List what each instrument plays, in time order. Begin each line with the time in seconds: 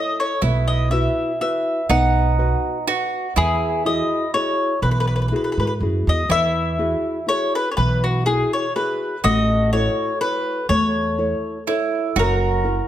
Already playing: nylon-string guitar E4 A4 C#5, mandolin D#5
0.20 mandolin C#5
0.42 upright bass B1, nylon-string guitar B3, mandolin E4
0.68 mandolin D#5
0.91 nylon-string guitar E4 F#4 B4, mandolin E5
1.41 nylon-string guitar E4 F#4 B4, mandolin E5
1.89 upright bass B1, nylon-string guitar B3, mandolin D#4 F#5
2.38 nylon-string guitar F#4 B4 D#5
2.87 nylon-string guitar F#4 B4 D#5, mandolin F#4
3.36 upright bass E2, nylon-string guitar E3, mandolin E4 G#4
3.85 nylon-string guitar E4 F#4 G#4, mandolin D#5
4.34 nylon-string guitar E4 F#4 G#4, mandolin C#5
4.82 upright bass B1, nylon-string guitar E3, mandolin B4
4.91 mandolin B4
5.00 mandolin B4
5.07 mandolin B4
5.16 mandolin B4
5.22 mandolin B4
5.28 nylon-string guitar E4, mandolin B4
5.32 nylon-string guitar F#4 G#4, mandolin B4
5.44 mandolin B4
5.52 mandolin B4
5.57 upright bass G#2, mandolin B4
5.67 mandolin B4
5.80 upright bass F#2, nylon-string guitar E4 F#4 G#4
6.07 upright bass E2, mandolin D#5
6.29 upright bass E2, nylon-string guitar E3, mandolin E4 E5
6.79 nylon-string guitar E4 F#4 G#4
7.27 nylon-string guitar E4 F#4 G#4, mandolin C#5
7.55 mandolin B4
7.71 mandolin C#5
7.77 upright bass B1, nylon-string guitar E3, mandolin B4
8.04 mandolin F#4
8.26 nylon-string guitar E4 F#4 G#4, mandolin G#4
8.53 mandolin C#5
8.76 nylon-string guitar E4 F#4 G#4, mandolin B4
9.24 upright bass A1, nylon-string guitar A3, mandolin F#4 D#5
9.73 nylon-string guitar E4 A4 C#5, mandolin C#5
10.21 nylon-string guitar E4 A4 C#5, mandolin B4
10.69 upright bass E2, nylon-string guitar A3, mandolin C#5
11.18 nylon-string guitar E4 A4 C#5
11.67 mandolin E4, nylon-string guitar E4 A4 C#5
12.16 upright bass F#1, nylon-string guitar F#3, mandolin F#4 A#4
12.64 nylon-string guitar E4 F#4 A#4